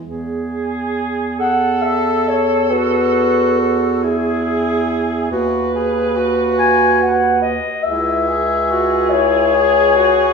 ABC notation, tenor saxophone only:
X:1
M:6/8
L:1/8
Q:3/8=47
K:E
V:1 name="Tenor saxophone"
z3 A3 | F3 E3 | F G F3 z | E G F E G F |]